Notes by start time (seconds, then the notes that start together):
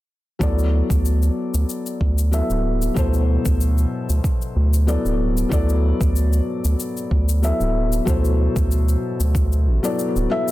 0.39 D2 F#3 B3 E4 A4 D5, kick, cabasa
0.59 cabasa
0.90 D2, kick, cabasa
1.05 cabasa
1.22 cabasa
1.54 D2, cabasa
1.69 cabasa
1.86 cabasa
2.01 D2, kick
2.18 cabasa
2.31 F#3 B3 E4 A4 E5, cabasa
2.50 D1, cabasa
2.82 cabasa
2.94 D2 B2 F#3 E4 A4, kick, cabasa
2.98 C5
3.14 cabasa
3.46 D2, kick, cabasa
3.61 cabasa
3.78 cabasa
4.09 D2, cabasa
4.24 kick, cabasa
4.42 cabasa
4.56 D2
4.74 cabasa
4.87 F#3 B3 E4 A4 D5, cabasa
5.05 D1, cabasa
5.37 cabasa
5.49 D2 F#3 B3 E4 A4 D5, kick, cabasa
5.69 cabasa
6.01 D2, kick, cabasa
6.16 cabasa
6.33 cabasa
6.64 D2, cabasa
6.80 cabasa
6.97 cabasa
7.11 D2, kick
7.29 cabasa
7.42 F#3 B3 E4 A4 E5, cabasa
7.60 D1, cabasa
7.92 cabasa
8.05 D2 B2 F#3 E4 A4, kick, cabasa
8.09 C5
8.25 cabasa
8.56 D2, kick, cabasa
8.71 cabasa
8.88 cabasa
9.20 D2, cabasa
9.35 kick, cabasa
9.52 cabasa
9.67 A1
9.83 F#3 B3 E4 A4 D5, cabasa
9.99 cabasa
10.16 D1, cabasa
10.30 F#3 B3 E4 A4 E5
10.48 cabasa